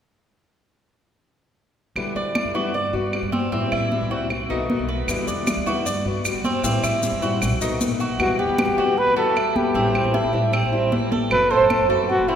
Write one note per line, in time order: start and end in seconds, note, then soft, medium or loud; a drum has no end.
1.96 2.14 E2 medium
1.96 2.34 B2 medium
1.96 2.34 D3 medium
1.96 2.35 G3 medium
1.96 2.35 B3 medium
1.96 2.35 E4 medium
1.96 high conga soft
1.96 claves medium
2.15 2.43 E3 medium
2.15 2.54 D5 medium
2.15 high conga soft
2.35 2.54 D3 soft
2.35 2.54 G3 soft
2.35 2.54 B3 soft
2.35 2.53 E4 soft
2.35 high conga medium
2.35 claves medium
2.44 2.74 F#2 medium
2.54 2.74 D3 soft
2.54 2.73 G3 medium
2.54 2.73 B3 medium
2.54 2.73 E4 medium
2.54 2.74 F#4 medium
2.54 high conga soft
2.74 2.92 G2 medium
2.74 2.93 D5 medium
2.74 muted steel-string acoustic guitar stroke medium
2.74 high conga soft
2.93 3.21 G2 medium
2.93 3.13 B3 medium
2.93 3.12 F#4 medium
2.93 high conga soft
3.12 3.51 G3 soft
3.12 3.52 B3 soft
3.12 3.52 F#4 soft
3.12 high conga soft
3.12 claves medium
3.22 3.51 G2 medium
3.32 3.51 C4 medium
3.32 high conga medium
3.52 3.71 A2 medium
3.52 3.90 E3 medium
3.52 3.91 G3 medium
3.52 3.71 C4 medium
3.52 3.91 C4 medium
3.52 3.91 E4 medium
3.52 high conga soft
3.72 4.00 A2 medium
3.72 4.10 E4 medium
3.72 high conga soft
3.72 claves medium
3.91 4.10 E3 soft
3.91 4.10 G3 soft
3.91 4.10 C4 soft
3.91 4.09 E4 soft
3.91 high conga medium
4.01 4.30 C2 medium
4.10 4.30 G3 soft
4.10 4.30 C4 medium
4.10 4.29 E4 medium
4.10 4.49 F#4 medium
4.10 high conga soft
4.30 4.49 B1 medium
4.30 muted steel-string acoustic guitar stroke medium
4.30 high conga soft
4.30 claves medium
4.49 4.78 B1 medium
4.49 4.68 D#3 soft
4.49 4.68 A3 medium
4.49 4.69 B3 medium
4.49 4.88 D#4 medium
4.49 4.68 F#4 medium
4.49 high conga soft
4.69 5.07 D#3 soft
4.69 5.08 A3 soft
4.69 5.08 B3 medium
4.69 5.08 F#4 medium
4.69 high conga medium
4.79 5.07 B1 medium
4.89 5.26 B4 medium
5.08 5.27 E2 medium
5.08 5.46 B2 medium
5.08 5.46 D3 medium
5.08 5.47 G3 medium
5.08 5.47 B3 medium
5.08 5.47 E4 medium
5.08 high conga soft
5.08 claves medium
5.08 maracas medium
5.27 5.55 E3 medium
5.27 5.65 D5 medium
5.27 high conga soft
5.27 maracas medium
5.47 5.66 D3 soft
5.47 5.66 G3 soft
5.47 5.66 B3 soft
5.47 5.65 E4 soft
5.47 high conga medium
5.47 claves medium
5.47 maracas medium
5.57 5.85 D2 medium
5.66 5.86 D3 soft
5.66 5.85 G3 medium
5.66 5.86 B3 medium
5.66 5.85 E4 medium
5.66 5.85 F#4 medium
5.66 high conga soft
5.66 maracas soft
5.85 6.04 G2 medium
5.85 6.05 D5 medium
5.85 muted steel-string acoustic guitar stroke soft
5.85 high conga soft
5.85 maracas medium
6.05 6.33 G2 medium
6.05 6.24 B3 soft
6.05 6.24 F#4 medium
6.05 high conga soft
6.24 6.63 G3 soft
6.24 6.64 B3 medium
6.24 6.64 F#4 medium
6.24 high conga soft
6.24 claves medium
6.24 maracas medium
6.34 6.62 G2 medium
6.44 6.63 C4 medium
6.44 high conga medium
6.44 maracas soft
6.63 6.82 A2 medium
6.63 7.01 E3 medium
6.63 7.02 G3 medium
6.63 6.83 C4 medium
6.63 7.03 C4 medium
6.63 7.03 E4 medium
6.63 high conga soft
6.63 maracas medium
6.83 7.11 A2 medium
6.83 7.21 E4 medium
6.83 high conga soft
6.83 claves medium
6.83 maracas medium
7.02 7.21 E3 soft
7.02 7.22 G3 soft
7.02 7.22 C4 medium
7.02 7.21 E4 soft
7.02 high conga medium
7.02 maracas medium
7.12 7.43 G2 medium
7.22 7.42 G3 soft
7.22 7.41 C4 medium
7.22 7.41 E4 medium
7.22 7.60 F#4 medium
7.22 high conga soft
7.22 maracas soft
7.42 7.60 B1 medium
7.42 muted steel-string acoustic guitar stroke medium
7.42 high conga soft
7.42 claves medium
7.42 maracas medium
7.61 7.89 B1 medium
7.61 7.79 D#3 soft
7.61 7.80 A3 medium
7.61 7.80 B3 medium
7.61 7.99 D#4 medium
7.61 7.80 F#4 medium
7.61 high conga soft
7.61 maracas medium
7.80 8.19 D#3 soft
7.80 8.19 A3 soft
7.80 8.19 B3 medium
7.80 8.20 F#4 soft
7.80 high conga medium
7.80 maracas medium
7.90 8.18 B1 medium
8.00 8.19 F#4 medium
8.00 maracas soft
8.19 8.47 E2 medium
8.19 8.58 B2 medium
8.19 8.57 E3 medium
8.19 8.58 G3 medium
8.19 8.58 B3 medium
8.19 8.41 F#4 medium
8.19 8.59 F#4 medium
8.19 high conga soft
8.19 claves medium
8.39 8.99 G4 medium
8.39 8.77 B4 medium
8.39 high conga soft
8.48 8.67 E2 medium
8.58 8.77 E3 soft
8.58 8.77 G3 soft
8.58 8.77 B3 soft
8.58 8.76 F#4 medium
8.58 high conga medium
8.58 claves medium
8.68 8.77 E2 medium
8.77 9.05 E3 medium
8.77 8.96 E3 medium
8.77 8.97 G3 medium
8.77 8.97 B3 medium
8.77 8.96 F#4 medium
8.77 9.16 F#4 medium
8.77 high conga soft
8.97 9.16 B4 loud
8.97 muted steel-string acoustic guitar stroke medium
8.97 high conga soft
9.07 9.53 E2 medium
9.16 9.35 E3 medium
9.16 9.35 G3 medium
9.16 9.36 B3 medium
9.16 9.35 F#4 medium
9.16 9.58 A4 medium
9.16 high conga soft
9.36 9.73 E3 soft
9.36 9.74 G3 medium
9.36 9.75 B3 soft
9.36 9.74 E4 medium
9.36 9.75 F#4 medium
9.36 high conga soft
9.36 claves medium
9.55 9.74 E2 medium
9.55 10.34 G4 medium
9.55 high conga medium
9.74 10.03 A1 medium
9.74 10.12 E3 medium
9.74 10.13 G3 medium
9.74 10.13 C4 medium
9.74 10.14 E4 medium
9.74 high conga soft
9.95 high conga soft
9.95 claves medium
10.04 10.23 A1 medium
10.13 10.32 E3 soft
10.13 10.33 G3 soft
10.13 10.33 C4 soft
10.13 10.52 E4 medium
10.13 10.32 E4 soft
10.13 high conga medium
10.23 10.32 A1 medium
10.33 10.61 A2 medium
10.33 10.52 G3 medium
10.33 10.52 C4 medium
10.33 10.52 E4 medium
10.33 high conga soft
10.52 10.91 C4 medium
10.52 muted steel-string acoustic guitar stroke medium
10.52 high conga soft
10.52 claves medium
10.62 11.09 A1 medium
10.72 10.91 G3 medium
10.72 10.92 C4 medium
10.72 10.91 E4 medium
10.72 high conga soft
10.91 11.30 E3 soft
10.91 11.30 G3 soft
10.91 11.31 C4 soft
10.91 11.11 E4 medium
10.91 11.31 E4 medium
10.91 high conga medium
11.11 11.30 A1 medium
11.11 11.50 A4 medium
11.11 high conga medium
11.30 11.58 F#1 medium
11.30 11.68 F#3 medium
11.30 11.69 A3 medium
11.30 11.70 C4 medium
11.30 11.70 F#4 medium
11.30 11.52 B4 loud
11.30 claves medium
11.51 11.90 A4 medium
11.51 11.89 C5 medium
11.51 high conga soft
11.60 11.79 F#1 medium
11.69 11.89 F#3 soft
11.69 11.89 A3 soft
11.69 11.89 C4 medium
11.69 11.88 F#4 soft
11.69 high conga medium
11.69 claves medium
11.79 11.89 F#1 medium
11.89 12.17 F#2 medium
11.89 12.08 A3 medium
11.89 12.08 C4 medium
11.89 12.08 F#4 medium
11.89 12.28 A4 medium
11.89 high conga soft
12.09 12.30 F#4 loud
12.09 muted steel-string acoustic guitar stroke medium
12.09 high conga soft
12.18 12.35 F#1 medium
12.28 12.35 A3 medium
12.28 12.35 C4 medium
12.28 12.35 E4 medium
12.28 12.35 F#4 medium
12.28 high conga soft